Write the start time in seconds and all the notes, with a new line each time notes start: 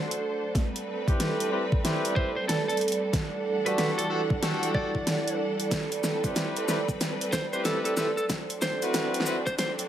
Already playing: F#3 D4 A4 C5 D5 F#5
0.11 closed hi-hat
0.54 G3 C4 B4, kick, snare, closed hi-hat
0.76 closed hi-hat
0.94 G5
1.07 C4 E4 G4 B4, kick, closed hi-hat
1.20 snare, closed hi-hat
1.40 closed hi-hat
1.52 C4 E4 G4 B4
1.72 kick
1.84 C4 E4 G4 B4, snare, closed hi-hat
2.05 closed hi-hat
2.16 C4 E4 G4 B4 C5, kick
2.36 C5
2.48 A4, snare, closed hi-hat
2.68 A4, closed hi-hat
2.77 closed hi-hat
2.81 closed hi-hat
2.88 closed hi-hat
2.92 closed hi-hat
3.13 E3 D4 E4 F#5, kick, snare, closed hi-hat
3.66 D4 F#4 G4 A4 B4, closed hi-hat
3.78 B4, snare, closed hi-hat
3.98 A4, closed hi-hat
4.10 D4 F#4 G4 A4
4.30 F#5, kick
4.42 D4 F#4 G4 A4, snare, closed hi-hat
4.63 closed hi-hat
4.74 D4 F#4 G4 A4 D5, kick
4.95 kick
5.07 snare, closed hi-hat
5.28 closed hi-hat
5.60 closed hi-hat
5.71 C4 B4, kick, snare, closed hi-hat, shaker
5.92 closed hi-hat, shaker
6.04 snare, shaker
6.24 C4 E4 G4 B4, kick, closed hi-hat, shaker
6.36 G5, snare, closed hi-hat, shaker
6.56 closed hi-hat, shaker
6.68 C4 E4 G4 B4, snare, shaker
6.88 kick, shaker
7.01 snare, closed hi-hat, shaker
7.21 closed hi-hat, shaker
7.33 C5, kick, snare, shaker
7.53 C4 E4 G4 B4 C5, shaker
7.65 A4, snare, closed hi-hat, shaker
7.85 A4, closed hi-hat, shaker
7.97 C4 E4 G4 A4 B4, snare, shaker
8.17 A4, shaker
8.29 F#3 C4 D4, kick, snare, closed hi-hat, shaker
8.50 closed hi-hat, shaker
8.62 C5, snare, shaker
8.82 C4 E4 F#4 B4, closed hi-hat, shaker
8.94 snare, closed hi-hat, shaker
9.14 closed hi-hat, shaker
9.20 snare
9.26 C4 E4 F#4 B4, shaker
9.46 C5 F#5, kick, shaker
9.59 C5, snare, closed hi-hat, shaker
9.79 closed hi-hat, shaker